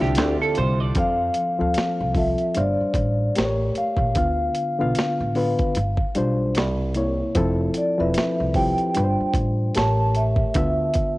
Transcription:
Already playing: analog synth pad D3 C4 D4 F4, reed electric piano D3 C4 E4 F4 G4 D5 E5
0.01 upright bass C2, clean electric guitar G4, snare
0.15 upright bass D2, snare, closed hi-hat
0.42 clean electric guitar A4
0.55 upright bass C2, clean electric guitar C5, closed hi-hat
0.80 clean electric guitar D5
0.95 upright bass F2, reed electric piano F3 C4 A4 F5, vibraphone F5, kick, closed hi-hat
1.34 closed hi-hat
1.59 upright bass D2, reed electric piano F3 C4 A4 F5
1.74 snare, closed hi-hat
2.00 upright bass C2
2.15 reed electric piano F3 C4 F4 A4, vibraphone E5, kick, open hi-hat
2.38 closed hi-hat
2.55 upright bass G1, reed electric piano G3 D4 C5 F5, vibraphone D5, closed hi-hat
2.81 muted upright bass stroke
2.94 upright bass A1, kick, closed hi-hat
3.35 upright bass A1, reed electric piano A3 G4 A#4 C5, snare, closed hi-hat
3.45 reed electric piano C#5
3.75 vibraphone F5, muted upright bass stroke, closed hi-hat
3.97 upright bass A#1, kick
4.15 upright bass D2, reed electric piano D3 B3 F4 F5, kick, closed hi-hat
4.55 closed hi-hat
4.79 upright bass B1, reed electric piano D3 B3 F4 F5
4.95 muted upright bass stroke, snare, closed hi-hat
5.20 upright bass A1
5.35 reed electric piano D3 B3 F4 B4, open hi-hat
5.59 kick, closed hi-hat
5.75 upright bass G1, closed hi-hat
5.97 muted upright bass stroke, kick
6.15 upright bass B1, reed electric piano G3 D4 F4 C5, closed hi-hat
6.55 upright bass C2, snare, closed hi-hat
6.94 reed electric piano C3 A#3 E4 C#5, closed hi-hat
7.35 upright bass F1, reed electric piano F3 C4 E4 A4, kick, closed hi-hat
7.74 vibraphone D5, closed hi-hat
7.98 upright bass E1, reed electric piano F3 C4 E4 B4, vibraphone E5
8.14 muted upright bass stroke, snare, closed hi-hat
8.40 upright bass C2
8.54 reed electric piano F3 C4 E4 G4, vibraphone G5, kick, open hi-hat
8.78 closed hi-hat
8.95 upright bass G1, reed electric piano G3 D4 F4 B4, closed hi-hat
9.04 reed electric piano C5
9.20 muted upright bass stroke
9.34 upright bass A1, kick, closed hi-hat
9.75 upright bass A1, reed electric piano A3 G4 A#4 C#5, vibraphone A5, snare, closed hi-hat
10.15 vibraphone E5, closed hi-hat
10.36 kick
10.54 upright bass D2, reed electric piano D3 B3 F4 E5, kick, closed hi-hat
10.94 kick, closed hi-hat

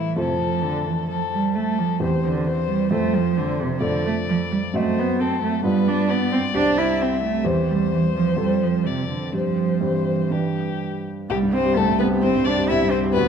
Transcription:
Already playing: grand piano A2 A3 E4 C5, cello E3, violin E4
0.17 grand piano F2 A3 F4 C5, cello C3, violin A4
0.40 cello F3
0.63 cello D3
0.87 cello E3
1.09 cello F3, violin A4
1.32 cello G3
1.55 cello A3, violin A4
1.79 cello F3
2.00 grand piano E2 C4 G4 C5, cello E3, violin C5
2.24 cello D3
2.46 cello E3, violin C5
2.70 cello G3
2.91 grand piano F2 C4 A4 C5, cello A3, violin C5
3.15 cello F3
3.37 cello D3
3.61 cello C3
3.81 grand piano F2 A3 A4 D5, cello D3, violin D5
4.06 cello A3
4.30 cello F3
4.51 cello G3
4.74 grand piano F#2 C4 F#4 D#5, cello A3, violin C5
4.99 cello B3
5.19 cello C4, violin A4
5.43 cello A3
5.63 grand piano G2 B3 F4 D5, cello G3, violin B4
5.88 cello D4
6.09 cello B3, violin D5
6.33 cello C4
6.54 grand piano C2 C4 G4 C5, cello D4
6.78 cello E4
7.01 cello C4, violin E5
7.24 cello A3
7.45 grand piano E2 C4 G4 C5, cello E3, violin C5
7.70 cello G3
7.93 cello E3
8.16 cello F3
8.37 grand piano F2 C4 A4 C5, cello G3
8.63 cello F3
8.86 cello C3, violin D5
9.10 cello D3
9.33 grand piano G2 C4 G4 C5, cello F3, violin C5
9.81 grand piano G2 C4 G4 C5, cello E3
10.31 grand piano G2 D4 G4 B4, violin G4
11.30 grand piano C2, cello G3, violin G4
11.43 grand piano G2
11.53 grand piano C4, cello C4, violin C5
11.65 grand piano G4
11.76 grand piano C2, cello A3, violin A4
11.88 grand piano G2
11.99 cello B3, grand piano C4, violin B4
12.11 grand piano G4
12.22 grand piano C2, cello C4, violin C5
12.36 grand piano G2
12.45 grand piano C4, cello D4, violin D5
12.58 grand piano G4
12.69 grand piano C2, cello E4, violin E5
12.82 grand piano G2
12.91 cello C4, grand piano C4, violin C5
13.05 grand piano G4
13.13 grand piano D2, cello B3, violin B4

